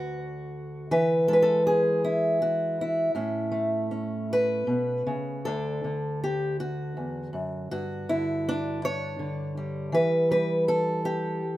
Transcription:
steel-string acoustic guitar
Already playing: D2 D3 F#4 B4
0.91 E3 B4
1.28 G#3 A4
1.33 B4
1.42 A4
1.67 G#4
2.04 E4
2.42 F#4
2.81 E4
3.15 A2 C#4
3.52 A3
3.91 C#4
4.33 B4
4.67 B2
5.07 C#3
5.45 D2 D3 D4 A4
5.84 D3
6.24 G4
6.60 F#4
6.97 E2
7.33 F#2
7.71 G2 F#4
8.09 D3 E4
8.49 D4
8.85 C#5
9.19 D3
9.57 G3
9.92 E3 B4
10.31 G3 B4
10.68 A4
11.05 G4

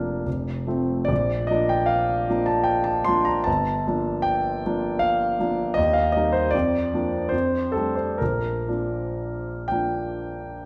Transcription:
grand piano
Already playing: F1 F3 A#3 D4 A#4
0.26 F1
0.67 F3 A3 C4
1.05 A#1 D5
1.47 F3 A#3 D#5
1.51 D4
1.69 G5
1.86 F5
2.29 F3 A#3 D4
2.46 A5
2.64 G5
2.84 A5
3.04 F3 A#3 D4 C6
3.25 A#5
3.44 G1 A5
3.87 F3 A#3 D4
4.22 G5
4.66 F3 A#3 D4
4.99 F5
5.40 F3 A#3 D4
5.74 D#2 D#5
5.93 F5
6.12 D#5
6.17 G3 A#3 D#4
6.32 C5
6.51 F2 D5
6.94 F3 A#3 D4
7.29 F2 C5
7.72 G3 A3 A4
7.77 D4
7.96 C5
8.18 A#1 A#4
8.68 F3 A#3 D4
9.68 F3 G5
9.72 A#3 D4

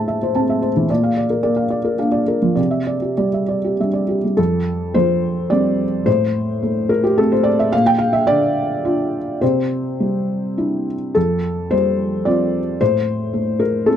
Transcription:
felt piano
Already playing: A2 A3 C5 E5 A5
0.08 E5
0.23 C5
0.35 C4 A5
0.50 E5
0.62 C5
0.77 E3
0.90 A#2 D5
1.04 F5
1.17 D5
1.30 A#4
1.43 A#3 D5
1.56 F5
1.70 D5
1.84 A#4
1.99 A#3 D4 F5
2.12 D5
2.28 A#4
2.42 F3
2.56 C3 D5
2.71 E5
2.87 D5
3.02 G4
3.17 G3 D5
3.34 E5
3.48 D5
3.64 G4
3.80 G3 D4 E5
3.94 D5
4.08 G4
4.24 G3
4.37 F2 A4
4.94 F3 C5
5.50 G3 C4 D5
6.06 A2 C5
6.63 A3
6.89 A#4
7.04 G4
7.18 A3 C4 A4
7.32 C5
7.43 D5
7.59 E5
7.72 A#2 F5
7.86 G5
7.99 F5
8.13 E5
8.27 D3 D5
8.85 D4 F4
9.41 C3 C5
10.00 G3
10.57 D4 E4
11.15 F2 A4
11.71 G3 C5
12.25 C4 F4 D5
12.81 A2 C5
13.33 A3
13.60 A#4
13.86 C4 E4 A4

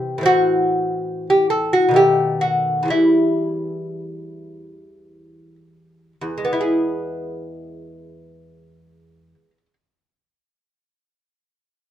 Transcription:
lute
Already playing: C3 E3 C4 G4
0.18 A2 E3
0.23 C4 F#4
1.30 G4
1.50 A4
1.73 F#4
1.89 B2 D#3
1.94 A3 G4
2.41 F#4
2.83 E2 E3
2.88 G3 E4
6.21 E2
6.38 G#3
6.45 B3
6.53 E4
6.61 G#4

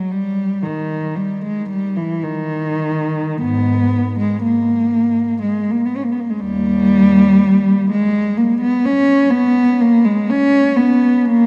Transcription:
cello
Already playing: F#3
0.11 G3
0.63 D#3
1.16 G3
1.41 G#3
1.69 G3
1.97 E3
2.23 D#3
3.41 G#2 B3
4.19 G#3
4.43 A#3
5.42 G#3
5.71 A#3
5.86 B3
5.97 C#4
6.04 A#3
6.12 B3
6.20 A#3
6.30 G#3
6.40 D#2 G3
7.91 G#3
8.37 A#3
8.61 B3
8.85 C#4
9.31 B3
9.81 A#3
10.05 G#3
10.30 C#4
10.76 B3
11.25 A#3

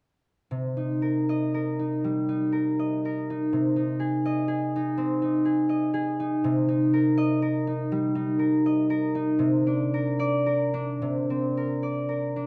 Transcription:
harp
0.51 C3
0.77 D#4
1.02 A#4
1.29 D#5
1.54 A#4
1.79 D#4
2.04 G3
2.29 D#4
2.52 A#4
2.79 D#5
3.05 A#4
3.30 D#4
3.53 C3
3.76 D#4
4.00 G#4
4.25 D#5
4.48 G#4
4.76 D#4
4.97 C4
5.22 D#4
5.45 G#4
5.69 D#5
5.94 G#4
6.20 D#4
6.44 C3
6.68 D#4
6.93 A#4
7.18 D#5
7.42 A#4
7.67 D#4
7.92 G3
8.15 D#4
8.39 A#4
8.66 D#5
8.90 A#4
9.15 D#4
9.39 C3
9.67 D4
9.94 A#4
10.19 D5
10.46 A#4
10.74 D4
11.02 C3
11.30 C4
11.57 A#4
11.83 D5
12.09 A#4
12.36 D4

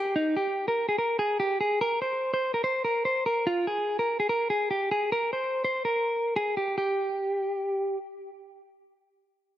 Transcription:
clean electric guitar
Already playing: G4
0.16 D#4
0.37 G4
0.68 A#4
0.89 G#4
0.98 A#4
1.19 G#4
1.40 G4
1.61 G#4
1.81 A#4
2.02 C5
2.34 C5
2.54 A#4
2.64 C5
2.85 A#4
3.05 C5
3.26 A#4
3.47 F4
3.67 G#4
3.99 A#4
4.20 G#4
4.29 A#4
4.50 G#4
4.71 G4
4.91 G#4
5.12 A#4
5.33 C5
5.64 C5
5.85 A#4
6.36 G#4
6.57 G4
6.78 G4

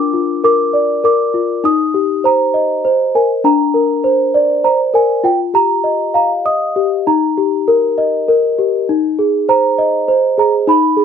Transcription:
celesta
Already playing: D4 F4 A#4 D6
0.13 F4
0.44 A#4 D6
0.73 D5
1.04 A#4 D6
1.34 F4
1.64 D#4 D#6
1.94 G4
2.24 C5 A#5
2.54 D#5
2.85 C5
3.15 A#4 G#5
3.44 D4 A#5
3.74 A#4
4.04 C5
4.34 D5
4.64 C5 A#5
4.94 A#4 G#5
5.24 F4 G5
5.54 G4 A#5
5.84 D#5
6.14 F5 A#5
6.45 D#5 D#6
6.76 G4
7.07 D#4 A#5
7.37 G4
7.68 A#4
7.98 D#5
8.28 A#4
8.59 G4
8.89 D#4
9.19 G#4
9.49 C5 A#5
9.78 D#5
10.08 C5
10.38 G#4 A#5
10.67 D#4 B5
10.97 G#4

